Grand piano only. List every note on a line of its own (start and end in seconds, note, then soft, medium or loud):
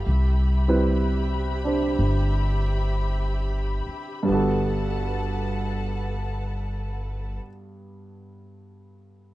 0.68 4.24 G3 soft
0.68 4.28 C4 soft
0.68 4.28 E4 soft
0.68 4.29 B4 medium
1.64 4.28 D4 soft
1.64 4.29 G4 soft
1.64 4.29 C5 soft
4.23 7.35 G2 medium
4.23 7.38 G3 soft
4.28 7.41 B3 soft
4.32 7.45 F#4 soft
4.32 7.47 A4 medium